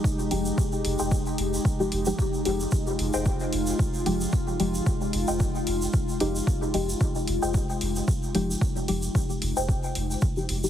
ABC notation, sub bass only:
X:1
M:4/4
L:1/16
Q:"Swing 16ths" 1/4=112
K:Fm
V:1 name="Sub bass" clef=bass
z2 F,,, z3 F,,, F,,, z2 F,,, z3 F,,, z | z2 F,,, z3 F,,, F,,, z2 F,,, z3 F,,, z | z2 F,,, z3 F,,, F,,, z2 F,,, z3 F,,, z | z2 F,,, z3 F,,, F,,, z2 F,,, z3 F,,, z |
z2 F,,, z3 F,,, F,,, z2 F,,, z3 F,,, z |]